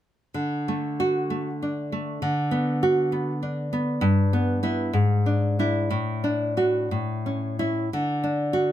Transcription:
0.34 D3
0.68 A3
1.00 F#4
1.30 A3
1.62 D4
1.92 A3
2.22 D3
2.51 B3
2.83 F#4
3.12 B3
3.43 D4
3.73 B3
4.01 G2
4.33 B3
4.63 B3 E4
4.93 G#2
5.26 D4
5.59 D4 E4
5.90 A2
6.24 D4
6.57 D4 F#4
6.91 A2
7.26 C#4
7.59 C#4 E4
7.93 D3
8.24 D4
8.53 F#4

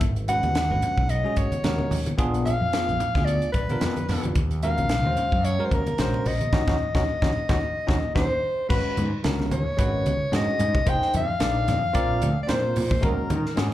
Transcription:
0.01 G#1, kick, closed hi-hat
0.16 closed hi-hat
0.28 G#3 C#4 F#4 B4 F#5, closed hi-hat, low conga
0.43 D#2, closed hi-hat, high conga
0.55 snare, closed hi-hat
0.70 G#1 G#3 C#4 F#4 B4
0.82 closed hi-hat, low conga
0.97 B1, kick
1.09 D#5, closed hi-hat
1.24 G#3 C#4 F#4 G#4
1.36 G#1 C#5, kick, closed hi-hat
1.52 muted fretless electric bass stroke, closed hi-hat, high conga
1.64 D#2 G#3 C#4 F#4 A#4, snare, closed hi-hat, low conga
1.78 high conga
1.91 D#2, open hi-hat, low conga
2.06 muted fretless electric bass stroke, closed hi-hat, high conga
2.18 A#1 B3 D4 F4 G#4, kick, closed hi-hat
2.34 closed hi-hat
2.45 F5, closed hi-hat, low conga
2.61 F2
2.73 B3 D4 F4 G#4, snare, closed hi-hat
2.89 A#1, closed hi-hat
3.00 closed hi-hat, low conga
3.15 D2 B3 D4 F4 G#4, kick, snare, closed hi-hat
3.25 D5, closed hi-hat
3.42 closed hi-hat
3.52 A#1 B4, kick, closed hi-hat
3.69 B3 D4 F4 A#4, closed hi-hat, high conga
3.81 F2, snare, closed hi-hat, low conga
3.96 closed hi-hat, high conga
4.09 F2 B3 D4 F4 B4, snare, open hi-hat, low conga
4.23 muted fretless electric bass stroke, closed hi-hat, high conga
4.35 D#2, kick, closed hi-hat
4.51 closed hi-hat
4.63 G#3 C#4 F#4 A#4 F5, closed hi-hat, low conga
4.78 A#1, closed hi-hat, high conga
4.89 snare, closed hi-hat
5.05 D#2 G#3 C#4 F#4 C5
5.17 closed hi-hat, low conga
5.32 F#2, kick
5.45 C#5, closed hi-hat
5.59 G#3 C#4 F#4 A#4
5.65 C5
5.71 D#2 A#4, kick, closed hi-hat
5.86 closed hi-hat, high conga
5.98 A#1 G#3 C#4 F#4 C5, snare, closed hi-hat, low conga
6.14 high conga
6.26 A#1 D#5, open hi-hat, low conga
6.41 muted fretless electric bass stroke, closed hi-hat, high conga
6.53 D#2 C#4 D#4 F#4, kick, snare, low conga
6.68 D#2 C#4 D#4 F#4, kick, snare, low conga
6.95 D#2 C#4 D#4 F#4, kick, snare, low conga
7.22 D#2 C#4 D#4 F#4, kick, snare, low conga
7.49 D#2 C#4 D#4 F#4, kick, snare, low conga
7.87 D#2 C#4 D#4 F#4, kick, snare, low conga
8.15 D#2 C#4 D#4 F#4 C5, kick, snare, low conga
8.69 G#1 G#3 C#4 F#4 B4, kick, crash
8.85 muted fretless electric bass stroke
8.97 G#2, closed hi-hat, high conga, low conga
9.23 C#2 G#3 C#4 F#4 A#4, snare, closed hi-hat
9.39 snare, high conga
9.51 D#2 C#5, closed hi-hat, high conga, low conga
9.77 G#1 G#3 C#4 F#4 B4, kick, closed hi-hat
10.05 C#2, closed hi-hat, high conga
10.21 muted fretless electric bass stroke
10.32 G#2 G#3 C#4 F#4 G#4 D#5, snare, closed hi-hat, low conga
10.47 muted fretless electric bass stroke
10.59 G#2, closed hi-hat, low conga
10.75 kick, high conga
10.86 F1 A#3 D#4 G#4 C5 G5, kick, closed hi-hat
11.02 muted fretless electric bass stroke, snare
11.14 F2 F5, closed hi-hat, high conga, low conga
11.40 A#1 A#3 D#4 G#4 D5, snare, closed hi-hat
11.68 F2, snare, closed hi-hat, high conga, low conga
11.93 A#1 C4 F4 A#4 D5, kick, closed hi-hat
12.22 D2, closed hi-hat, high conga
12.38 muted fretless electric bass stroke
12.43 D5
12.47 A#2 C4 F4 A#4 C5, snare, closed hi-hat, low conga
12.64 muted fretless electric bass stroke
12.76 A#2, open hi-hat, low conga
12.91 kick, high conga
13.01 D#2 G#3 C#4 F#4 A#4, kick, closed hi-hat
13.19 muted fretless electric bass stroke
13.30 D#3, closed hi-hat, high conga, low conga
13.46 snare
13.56 G#2 G#3 C#4 F#4 G#4, snare, closed hi-hat

